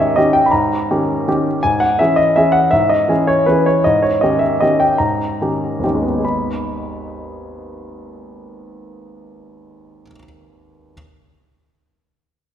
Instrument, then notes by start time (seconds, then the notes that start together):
grand piano
Already playing: G#2 D#3 C#4 G4 C#5 D#5 E5
0.16 D#3 C#4 G4 D#5
0.33 G5
0.46 B5
0.52 G#2 A#5
0.91 D#3 C#4 G4
1.28 D#3 C#4 G4
1.63 G#2 G#5
1.80 F#5
1.99 E3 C#4 G#4 E5
2.16 D#5
2.36 E3 C#4 G#4 E5
2.52 F#5
2.71 G#2 E5
2.89 D#5
3.08 E3 C#4 G#4
3.27 C#5
3.46 E3 C#4 G#4 B4
3.66 C#5
3.84 G#2 D#5
4.02 C#5
4.21 D#3 C#4 G4 D#5
4.39 E5
4.61 D#3 C#4 G4 D#5
4.80 G5
4.98 G#2 A#5
5.42 D#3 C#4 G4
5.79 G#1
5.83 D#2 D#3 C#4 G4
5.94 G#3
6.02 B3
6.10 D#4
6.18 G#4
6.25 B5